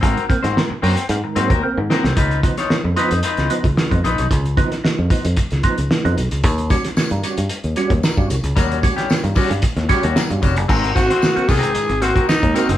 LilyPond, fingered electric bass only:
\new Staff \with { instrumentName = "Fingered electric bass" } { \clef bass \time 4/4 \key aes \mixolydian \tempo 4 = 113 aes,,16 r8 aes,16 r8 ges,16 r16 aes,16 r16 aes,16 ees,16 r16 aes,16 r16 c,16 | des,8. r8 f,16 r16 f,16 r16 des,16 r16 des,16 r16 f,16 bes,,16 ces,16 | des,8. r8 f,16 r16 f,16 r16 des,16 r16 des,16 r16 f,16 ces,16 des,16 | ees,8. r8 g,16 r16 g,16 r16 ees,16 r16 ees,16 r16 g,16 c,16 des,16 |
ees,8. r8 g,16 r16 g,16 r16 ees,16 r16 ees,16 r16 g,16 f,,16 fis,,16 | aes,,8 aes,,16 r8. c,16 r8 aes,,8 r8 ees,16 r16 ges,,16 | }